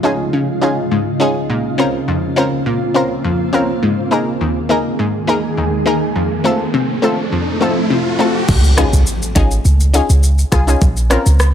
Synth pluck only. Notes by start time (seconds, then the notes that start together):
Already playing: G#2
0.03 C#4 D#4 F4 G#4
0.33 C#3
0.61 C#4 D#4 F4 G#4
0.91 G#2
1.20 C#4 D#4 F4 G#4
1.50 A#2
1.78 C4 C#4 F4 A#4
2.08 F2
2.36 C4 C#4 F4 A#4
2.66 A#2
2.94 C4 C#4 F4 A#4
3.24 F2
3.53 C4 C#4 F4 A#4
3.83 G#2
4.11 A#3 D#4 G#4 A#4
4.41 D#2
4.69 A#3 D#4 G#4 A#4
4.99 G#2
5.27 A#3 D#4 G#4 A#4
5.57 D#2
5.86 A#3 D#4 G#4 A#4
6.16 F2
6.44 A3 C4 F4 A4
6.74 C3
7.02 A3 C4 F4 A4
7.32 F2
7.60 A3 C4 F4 A4
7.90 C3
8.19 A3 C4 F4 A4
8.77 C#4 D#4 F4 G#4
9.35 C#4 D#4 F4 G#4
9.93 C#4 D#4 F4 G#4
10.52 F4 G#4
10.67 C#4 D#4 F4 G#4
11.10 C4 C#4 F4 A#4